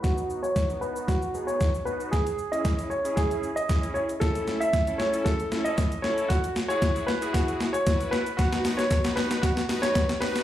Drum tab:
HH |----------------|xx-xxx-xxx-xxx-x|xx-xxx-xxx-xxx-x|xx-xxx-xxx-xxx-x|
SH |xxxxxxxxxxxxxxxx|xxxxxxxxxxxxxxxx|xxxxxxxxxxxxxxxx|xxxxxxxxxxxxxxxx|
SD |o---o---o---o---|o---o---o---o---|o-o-o-o-o-o-o-o-|o-o-o-o-o-o-o-o-|
BD |o---o---o---o---|o---o---o---o---|o---o---o---o---|o---o---o---o---|

HH |xxoxxxoxxxoxxxox|
SH |xxxxxxxxxxxxxxxx|
SD |oooooooooooooooo|
BD |o---o---o---o---|